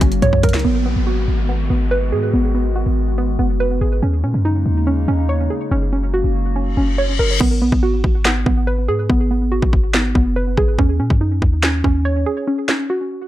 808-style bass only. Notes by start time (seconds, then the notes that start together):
0.01 F#1
0.22 F#2
0.54 C#2
0.65 G#1
0.86 A#1
0.96 G#1
1.28 G#1
1.70 G#1
2.12 G#2
2.33 G#1
2.86 G#1
3.39 F#1
3.81 G#1
4.02 D#2
4.24 A#2
4.34 F#2
4.66 D#2
5.08 D#2
5.71 F#1
6.24 F#1
6.77 F#1
7.19 F#1
7.41 G#1
7.62 A#1
7.72 G#1
8.04 G#1
8.46 G#1
8.88 G#2
9.10 G#1
9.62 G#1
10.15 F#1
10.57 G#1
10.79 D#2
11.00 A#2
11.10 F#2
11.42 D#2
11.84 D#2